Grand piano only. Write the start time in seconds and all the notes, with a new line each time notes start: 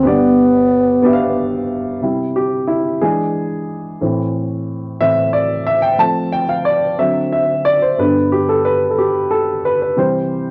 0.03 G1 G2 B3 D4 G4
0.07 D5
1.03 B3 D4 G4 E5
1.13 F5
2.02 C3 G3 E4
2.36 G4
2.67 E4
3.01 E3 G#3 D4 G#4
4.01 A2 E3 C4
5.00 A2 E3 C4 E5
5.33 D5
5.67 E5
5.82 G5
5.98 F3 A3 C4 A5
6.33 G5
6.49 F5
6.65 D5
6.98 D3 F#3 C4 E5
7.32 E5
7.65 D5
7.82 C5
7.98 G2 D3 B3 B4
8.32 G4
8.49 A4
8.65 B4
8.90 A4
8.98 G4
9.31 A4
9.65 B4
9.82 B4
9.96 C3 E3 G3 C5